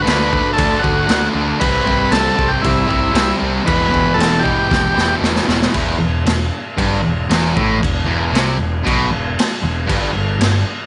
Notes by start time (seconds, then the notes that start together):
0.02 D3 A3 D4 B4
0.07 D2, snare, crash
0.31 D3 A3 D4, kick
0.53 D3 A4
0.58 D2 A3 D4, kick, crash
0.79 D3 A3 F#4
0.84 D2 D4, kick
1.07 D2 D3 A3 D4, snare, crash
1.34 D2 D3 A3 D4
1.60 C2 C3 G3 C4 B4, kick, crash
1.85 C2 C3 G3 C4, kick
2.11 C2 C3 G3 C4 A4, snare, crash
2.36 C2 C3 G3 C4, kick
2.48 G4
2.62 C2 C3 G3 C4 E4, kick, crash
2.87 C2 C3 G3 C4, kick
3.12 C2 C3 G3 C4, snare, crash
3.38 C2 C3 G3 C4
3.63 E2 B2 E3 B4, crash
3.68 E1, kick
3.89 E2 B2 E3
3.94 kick
4.14 E1 E2 B2 E3 A4
4.20 snare, crash
4.39 E2 G4
4.43 B2 E3, kick
4.69 E1 E2 B2 E3, kick, snare
4.94 E1 E2 B2 E3, snare
5.20 E1 E2 B2 E3, snare
5.36 snare
5.46 E1 E2 B2 E3, snare
5.62 snare
5.72 E1 E2, kick, crash
5.99 E1 E2
6.25 E1 E2, snare, crash
6.77 G1 G2, kick, crash
7.03 E1 E2
7.29 E1 E2, snare, crash
7.54 A1 A2, kick
7.79 E1 E2, kick
7.84 crash
8.05 E1 E2
8.31 C2 C3
8.35 snare, crash
8.57 E1 E2
8.83 B1 B2, kick, crash
9.10 E1 E2
9.39 snare, crash
9.62 E1 E2
9.86 G1 G2, kick, crash
10.13 G1 G2
10.39 G1 G2, snare, crash